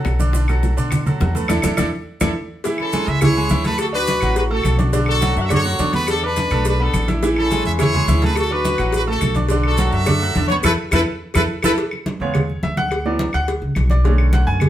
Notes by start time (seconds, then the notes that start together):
Already playing: F#3 F#4 A4
0.05 B1, high bongo, low bongo, high conga, claves, maracas
0.19 D3 D4 D5, high bongo, high conga, maracas
0.33 D3 D4 D5, high bongo, high conga, maracas
0.48 F#3 F#4 A4, high bongo, high conga, claves, maracas
0.63 high bongo, high conga, maracas
0.77 B2 D3 D4 D5, maracas
0.91 high bongo, high conga, low conga, claves, maracas
1.06 F#3 F#4 A4, high bongo, high conga, low conga, maracas
1.20 E2 F#3 F#4 A4, high bongo, low bongo, high conga, maracas
1.35 A3 A4 B4, high bongo, high conga, maracas
1.48 E2 D4 E4 A4, high bongo, high conga, claves, maracas
1.62 E2 D4 E4 A4, high bongo, high conga, claves, maracas
1.77 E2 D4 E4 A4, high bongo, high conga, claves, maracas
2.21 E2 D4 E4 A4, high bongo, high conga, claves, maracas
2.64 E3 E4 E5, cowbell, high conga, maracas
2.78 C#4 E4 A4, high conga, claves
2.92 G#3 G#4 G#5, cowbell, high conga, maracas
3.07 C#2 E5, high conga, maracas
3.21 E3 E4 G#4 C#5 E5, cowbell, high conga, low conga, claves, maracas
3.36 G#3 G#4 G#5
3.49 D2 E3 E4 E5, cowbell, high conga, maracas
3.64 A3 A4 B4 A5, cowbell, high conga, maracas
3.78 F#4 A4, cowbell, high conga, claves, maracas
3.93 D4 F#4 B4 D5 D6, high conga
4.07 cowbell, high conga, maracas
4.21 A1 F#3 F#4 F#5, cowbell, high conga, claves, maracas
4.36 F#4 B4, cowbell, high conga, maracas
4.50 A3 F#4 A4 A5, high conga
4.63 B1, cowbell, high conga, claves, maracas
4.78 D4 D5 D6, cowbell, high conga, maracas
4.93 D3 D4 D5, cowbell, high conga, maracas
5.06 D4 F#4 A4, high conga, claves
5.21 F#3 F#4 F#5, cowbell, high conga, maracas
5.36 F#2 E5, high conga, maracas
5.40 F#5
5.45 E5
5.49 D3 D4 F#4 A4 C#5 D5, cowbell, high conga, low conga, claves, maracas
5.64 F#3 F#4 F#5, high conga, maracas
5.79 E2 D3 D4 D5, cowbell, high conga, maracas
5.93 B3 B4 B5, cowbell, high conga, maracas
6.07 D4 A4, cowbell, high conga, claves, maracas
6.23 D4 B4 D5 D6, high conga
6.36 cowbell, high conga, maracas
6.50 B1 A3 A4 A5, cowbell, high conga, claves, maracas
6.65 D4 B4, cowbell, high conga, maracas
6.80 B3 D4 A4 B4 B5, high conga
6.94 A1, cowbell, high conga, claves, maracas
7.08 E4 E5 E6, cowbell, high conga, maracas
7.23 E3 E4 E5, cowbell, high conga, maracas
7.36 C#4 E4 A4, high conga, claves
7.51 G#3 G#4 G#5, cowbell, high conga, maracas
7.65 E2 E5, high conga, maracas
7.79 E3 E4 G#4 C#5 E5, cowbell, high conga, low conga, claves, maracas
7.94 G#3 G#4 G#5, high conga, low conga
8.08 D2 E3 E4 E5, cowbell, high conga, maracas
8.22 A3 A4 B4 A5, cowbell, high conga, maracas
8.36 F#4 A4, cowbell, high conga, claves, maracas
8.51 D4 F#4 B4 D5 D6, high conga
8.65 cowbell, high conga, maracas
8.78 A1 F#3 F#4 F#5, cowbell, high conga, claves, maracas
8.93 F#4 B4, cowbell, high conga, maracas
9.07 A3 F#4 A4 A5, high conga
9.21 B1, cowbell, high conga, claves, maracas
9.35 D4 D5 D6, cowbell, high conga, maracas
9.49 D3 D4 D5, cowbell, high conga, maracas
9.63 D4 F#4 A4, high conga, claves
9.77 F#3 F#4 F#5, cowbell, high conga, maracas
9.92 F#2 A4 E5, high conga, maracas
10.06 D3 D4 D5, cowbell, high conga, low conga, claves, maracas
10.22 F#3 F#4 F#5, high conga
10.35 E2 D3 D4 D5, cowbell, high conga, maracas
10.48 B3 B4 C#5 B5, cowbell, high conga, maracas
10.63 E2 E4 A4 B4, cowbell, high conga, claves, maracas
10.91 E2 E4 A4 B4, cowbell, high conga, claves, maracas
11.34 E2 E4 A4 B4, cowbell, high conga, claves, maracas
11.63 E2 E4 A4 B4, cowbell, high conga, claves, maracas
11.78 cowbell, high conga
11.91 high conga, claves
12.06 cowbell, high conga
12.20 E2 C#3 G#3 B3 C#5, high conga
12.34 cowbell, high conga, low conga, claves
12.50 high conga
12.63 D2 E5, cowbell, high conga
12.77 F#5, cowbell, high conga
12.91 cowbell, high conga, claves
13.05 E3 F#3 B3 D5, high conga
13.19 cowbell, high conga
13.33 D2 F#5, cowbell, high conga, claves
13.48 cowbell, high conga
13.62 C#2, high conga
13.75 B1, cowbell, high conga, claves
13.90 D5, cowbell, high conga
14.04 D3 A3 C#4, cowbell, high conga
14.18 high conga, claves
14.33 F#5, cowbell, high conga
14.47 F#2 G#5, high conga
14.60 cowbell, high conga, low conga, claves